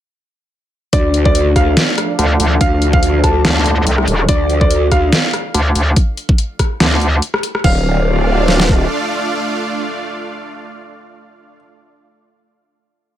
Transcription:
0.93 D2 F3 A3 D4 A4 D5, kick, closed hi-hat
1.14 closed hi-hat
1.25 D5, kick
1.35 closed hi-hat
1.56 F5, kick, cross-stick, closed hi-hat
1.77 snare, closed hi-hat
1.98 cross-stick, closed hi-hat
2.19 D2, closed hi-hat
2.40 D2, open hi-hat
2.61 D2 F5, kick, closed hi-hat
2.82 closed hi-hat
2.93 F5, kick
3.03 closed hi-hat
3.24 A5, kick, cross-stick, closed hi-hat
3.45 D2, snare, closed hi-hat
3.66 closed hi-hat
3.87 C2, closed hi-hat
3.98 cross-stick
4.08 D#1, open hi-hat
4.19 cross-stick
4.29 D2 D5, kick, closed hi-hat
4.50 closed hi-hat
4.61 D5, kick
4.71 closed hi-hat
4.92 F5, kick, cross-stick, closed hi-hat
5.12 snare, closed hi-hat
5.33 cross-stick, closed hi-hat
5.54 D2, closed hi-hat
5.75 D2, open hi-hat
5.96 kick, closed hi-hat
6.17 closed hi-hat
6.29 kick
6.38 closed hi-hat
6.59 kick, cross-stick, closed hi-hat
6.80 D2, snare, closed hi-hat
7.01 closed hi-hat
7.22 closed hi-hat
7.34 cross-stick
7.43 open hi-hat
7.55 cross-stick
7.64 D1 A3 D4 F4 D5 F5, kick, crash
8.48 snare
8.60 snare
8.69 kick

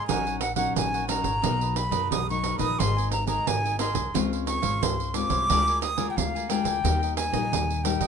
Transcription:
0.07 A#1 A#2 F#3 C#4 D#4 A#4 C#5 F#5 G#5, pandeiro
0.26 A#4 C#5 F#5, pandeiro
0.41 F#5, muted cavaquinho stroke, pandeiro
0.56 F#3 C#4 D#4 A#4 C#5 F#5, pandeiro
0.76 A#1 A#2 G#5, pandeiro
0.94 A#4 C#5 F#5, pandeiro
1.08 F#3 C#4 D#4 A#4 C#5 F#5 A#5, pandeiro
1.23 G#1 A#4 C#5 F#5, pandeiro
1.42 B1 B2 F#3 A#3 D#4 A#4 B4 D#5, pandeiro
1.61 A#4 B4 D#5, pandeiro
1.76 B5, muted cavaquinho stroke, pandeiro
1.91 F#2 F#3 A#3 D#4 A#4 B4 D#5, pandeiro
2.11 B1 F#2 D#6, pandeiro
2.30 F#3 A#3 D#4 C#6, pandeiro
2.44 D#4 A#4 B4 D#5, pandeiro
2.59 A#1 D#3 A#3 D#4 A#4 B4 D#5 D#6, pandeiro
2.79 G#1 G#2 G#4 A#4 D#5 G#5 C6, pandeiro
2.97 A#4 D#5 G#5, pandeiro
3.12 A#5, muted cavaquinho stroke, pandeiro
3.26 D#3 A#3 D#4 A#4 D#5 G#5 A#5, pandeiro
3.46 G#1 D#3 G#5, pandeiro
3.65 A#4 D#5 G#5, pandeiro
3.79 D#3 A#3 D#4 G#4 A#4 D#5 G#5 C6, pandeiro
3.95 C2 A#4 D#5 G#5, pandeiro
4.14 C#2 C#3 G#3 C4 F4 C5 C#5 F5, pandeiro
4.33 C5 C#5 F5, pandeiro
4.47 C#6, muted cavaquinho stroke, pandeiro
4.62 G#1 G#3 F4 C5 C#5 F5, pandeiro
4.82 C#2 G#2 C6, pandeiro
5.00 pandeiro
5.14 G#3 C4 F4 C5 C#5 F5 D6, pandeiro
5.30 C2 C5 C#5 F5, pandeiro
5.49 D2 D3 G#3 A#3 D4 F4 A#4 D5 G#5, pandeiro
5.67 A#4 D5 G#5, pandeiro
5.82 D#6, muted cavaquinho stroke, pandeiro
5.97 G#3 A#3 F4 A#4 D5 G#5, pandeiro
6.10 G5
6.17 D2 D3 F5, pandeiro
6.35 A#4 D5 G#5, pandeiro
6.49 G#3 A#3 D4 F4 A#4 D5 G5 G#5, pandeiro
6.64 D2 A#4 D5 G#5, pandeiro
6.84 D#2 D#3 G3 A#3 D#4 G4 A#4 D#5 G5, pandeiro
7.02 A#4 D#5 G5, pandeiro
7.16 G#5, muted cavaquinho stroke, pandeiro
7.32 A#1 G3 A#3 D#4 A#4 D#5, pandeiro
7.52 D#2 A#2, pandeiro
7.70 pandeiro
7.84 G3 A#3 D#4 G4 A#4 D#5 G5, pandeiro
8.00 D#3 A#4 D#5 G5, pandeiro

